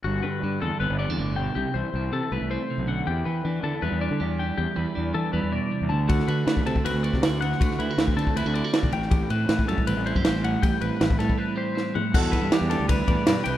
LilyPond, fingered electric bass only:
\new Staff \with { instrumentName = "Fingered electric bass" } { \clef bass \time 4/4 \key e \minor \tempo 4 = 159 g,,8 g,8 g,8 e,16 r16 g,,16 g,,8 e,16 g,,4 | c,16 r16 c,16 r16 c,8 c16 r16 c,16 c,8 r8 b,,8. | e,8 e8 e8 d16 r16 e,16 e,8 d16 e,4 | e,16 r16 e,16 r16 e,8 e16 r16 e,16 e,8 r8 e,16 d,8~ |
d,8 d8 d8 c16 r16 d,16 d,8 c16 d,4 | d,16 r16 d,16 r16 d,8 d16 r16 d,16 d,8 r8 b,,16 a,,8~ | a,,8 a,8 a,8 fis,16 r16 a,,16 a,,8 fis,16 a,,4 | a,,16 r16 a,,16 r16 a,,8 a,16 r2 r16 |
e,8. g,16 r16 e,8 d,8. e,16 r16 g,16 r16 c,16 r16 | }